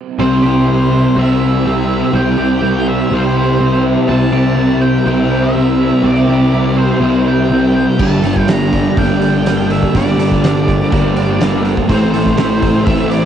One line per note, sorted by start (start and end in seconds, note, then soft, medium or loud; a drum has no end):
0.18 0.40 C2 loud
0.18 0.67 C3 medium
0.18 0.46 G3 loud
0.18 0.91 C4 medium
0.18 0.43 C4 loud
0.18 1.18 E4 medium
0.18 7.96 G4 medium
0.18 1.19 C5 loud
0.18 7.96 C5 medium
0.18 7.96 E5 medium
0.18 4.07 C6 loud
0.42 1.07 C2 medium
0.42 0.70 C4 medium
0.42 2.38 G4 medium
0.47 0.68 G3 medium
0.67 1.16 C3 medium
0.67 1.18 G3 medium
0.67 1.19 C4 medium
0.67 1.40 E4 medium
0.91 1.16 C4 medium
1.16 2.01 C2 medium
1.16 1.64 C3 loud
1.16 1.66 G3 loud
1.16 1.65 C4 medium
1.16 1.67 C4 loud
1.16 2.16 E4 medium
1.16 2.15 E5 medium
1.40 1.88 E4 medium
1.65 2.13 C3 medium
1.65 2.15 G3 medium
1.65 2.13 C4 medium
1.65 2.16 C4 medium
1.89 2.62 E4 medium
2.13 2.35 C2 medium
2.13 2.61 C3 medium
2.13 2.40 G3 loud
2.13 2.86 C4 medium
2.13 2.37 C4 loud
2.13 3.13 E4 loud
2.13 2.88 G5 loud
2.37 3.02 C2 medium
2.37 2.63 G3 medium
2.37 2.64 C4 medium
2.37 4.32 G4 medium
2.61 3.10 C3 medium
2.61 3.12 G3 medium
2.61 3.13 C4 medium
2.61 3.35 E4 medium
2.87 3.11 C4 medium
2.87 3.13 E5 loud
3.10 3.96 C2 medium
3.10 3.59 C3 loud
3.10 3.60 G3 loud
3.10 3.60 C4 medium
3.10 3.61 C4 loud
3.10 4.10 E4 medium
3.10 3.82 C5 medium
3.35 3.84 E4 medium
3.59 4.07 C3 medium
3.59 4.09 G3 medium
3.59 4.08 C4 medium
3.59 4.10 C4 loud
3.84 4.57 E4 medium
4.07 4.30 C2 loud
4.07 4.56 C3 medium
4.07 4.34 G3 medium
4.07 4.80 C4 medium
4.07 4.32 C4 loud
4.07 7.94 A#4 loud
4.07 4.84 A5 loud
4.11 5.07 E4 loud
4.32 4.97 C2 medium
4.32 4.57 G3 medium
4.32 4.59 C4 medium
4.32 6.28 G4 medium
4.56 5.04 C3 medium
4.56 5.06 G3 medium
4.56 5.07 C4 medium
4.56 5.29 E4 medium
4.82 5.05 C4 medium
4.82 5.06 G5 medium
5.05 5.91 C2 medium
5.05 5.52 C3 medium
5.05 5.55 G3 loud
5.05 5.54 C4 medium
5.05 5.55 C4 loud
5.05 6.03 E4 medium
5.05 5.43 G5 loud
5.30 5.78 E4 medium
5.44 6.06 E5 medium
5.53 6.02 C3 medium
5.53 6.04 G3 medium
5.53 6.03 C4 medium
5.53 6.05 C4 medium
5.80 6.52 E4 medium
6.03 6.25 C2 loud
6.03 6.51 C3 loud
6.03 6.30 G3 loud
6.03 6.76 C4 medium
6.03 6.26 C4 loud
6.03 7.01 E4 loud
6.03 6.78 D5 loud
6.27 6.92 C2 medium
6.27 6.53 G3 medium
6.27 6.53 C4 medium
6.27 8.23 G4 medium
6.52 6.99 C3 medium
6.52 7.01 G3 medium
6.52 7.02 C4 medium
6.52 7.25 E4 medium
6.77 6.99 C4 medium
6.77 7.28 C5 medium
7.00 7.86 C2 loud
7.00 7.48 C3 medium
7.00 7.50 G3 medium
7.00 7.48 C4 medium
7.00 7.51 C4 loud
7.00 7.99 E4 medium
7.26 7.73 E4 medium
7.26 8.02 G5 loud
7.49 7.97 C3 medium
7.49 8.00 G3 medium
7.49 7.98 C4 medium
7.49 7.99 C4 medium
7.74 7.99 E4 medium
7.98 8.20 G1 loud
7.98 8.47 G2 medium
7.98 8.25 D3 medium
7.98 8.72 G3 medium
7.98 8.23 G3 loud
7.98 8.98 A#3 loud
7.98 8.99 D4 loud
7.98 11.85 G4 medium
7.98 9.92 D5 medium
7.98 13.25 G5 loud
7.98 8.49 A5 loud
7.98 kick loud
7.98 crash loud
8.23 8.87 G1 medium
8.23 8.47 D3 soft
8.23 8.50 G3 medium
8.23 9.50 A4 medium
8.23 open hi-hat medium
8.36 kick medium
8.47 8.95 G2 medium
8.47 8.97 D3 medium
8.47 8.98 G3 medium
8.47 9.20 D4 medium
8.47 8.99 A#5 loud
8.47 snare loud
8.47 open hi-hat medium
8.72 9.94 G3 medium
8.72 kick medium
8.72 open hi-hat soft
8.96 9.82 G1 loud
8.96 9.44 G2 loud
8.96 9.45 D3 medium
8.96 9.47 G3 loud
8.96 9.45 A#3 medium
8.96 9.94 A#3 medium
8.96 9.94 D4 loud
8.96 9.71 G5 loud
8.96 kick loud
8.96 open hi-hat medium
9.21 9.70 D4 medium
9.21 open hi-hat medium
9.45 9.93 G2 medium
9.45 9.94 D3 medium
9.45 9.95 G3 loud
9.45 10.68 A#3 medium
9.45 snare loud
9.45 open hi-hat medium
9.70 10.42 D4 medium
9.70 9.96 E5 loud
9.70 open hi-hat medium
9.83 kick medium
9.93 10.16 G1 loud
9.93 10.42 G2 loud
9.93 10.20 D3 loud
9.93 10.67 G3 medium
9.93 10.17 G3 medium
9.93 10.91 A#3 loud
9.93 10.91 D4 loud
9.93 11.87 C5 medium
9.93 11.62 D5 loud
9.93 kick loud
9.93 open hi-hat medium
10.18 10.82 G1 medium
10.18 10.43 D3 medium
10.18 10.44 G3 medium
10.18 11.45 A4 medium
10.18 open hi-hat medium
10.31 kick medium
10.31 snare soft
10.43 10.90 G2 medium
10.43 10.92 D3 medium
10.43 10.93 G3 medium
10.43 11.16 D4 medium
10.43 snare loud
10.43 open hi-hat medium
10.68 11.90 G3 medium
10.68 kick medium
10.68 open hi-hat medium
10.91 11.77 G1 loud
10.91 11.39 G2 loud
10.91 11.41 D3 loud
10.91 11.42 G3 loud
10.91 11.40 A#3 medium
10.91 11.88 A#3 medium
10.91 11.89 D4 medium
10.91 kick loud
10.91 open hi-hat medium
11.16 11.63 D4 medium
11.16 open hi-hat medium
11.40 11.88 G2 medium
11.40 11.88 D3 medium
11.40 11.89 G3 medium
11.40 11.89 A#3 medium
11.40 snare loud
11.40 open hi-hat medium
11.65 11.89 D4 medium
11.65 open hi-hat medium
11.77 kick medium
11.89 12.11 A1 loud
11.89 12.37 A2 medium
11.89 12.16 E3 loud
11.89 12.13 A3 loud
11.89 12.60 C4 medium
11.89 12.88 C4 loud
11.89 13.25 E4 medium
11.89 12.88 E4 loud
11.89 13.25 A4 medium
11.89 13.25 C5 medium
11.89 12.85 C5 loud
11.89 kick loud
11.89 open hi-hat medium
12.13 12.78 A1 medium
12.13 12.39 E3 medium
12.13 12.40 A3 medium
12.13 13.25 A4 medium
12.13 open hi-hat medium
12.26 kick medium
12.26 snare soft
12.37 12.86 A2 medium
12.37 12.88 E3 medium
12.37 12.88 A3 medium
12.37 13.11 E4 medium
12.37 snare loud
12.37 open hi-hat medium
12.62 12.86 C4 medium
12.62 kick medium
12.62 open hi-hat medium
12.86 13.25 A1 loud
12.86 13.25 A2 medium
12.86 13.25 E3 loud
12.86 13.25 C4 medium
12.86 13.25 C4 loud
12.86 13.25 E4 medium
12.86 13.10 E5 loud
12.86 kick loud
12.86 open hi-hat medium
12.90 13.25 A3 loud
13.10 13.25 E4 medium
13.10 13.25 D5 loud
13.10 open hi-hat medium